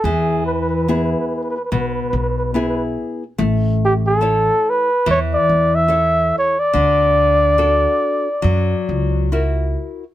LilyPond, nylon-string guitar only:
\new Staff \with { instrumentName = "Nylon-string guitar" } { \time 4/4 \key e \dorian \tempo 4 = 72 e4 <b e' gis'>4 b,4 <b e' gis'>4 | a4 <e' a' cis''>4 e4 <e' a' cis''>4 | d4 <d' fis' a'>4 fis4 <e' fis' ais'>4 | }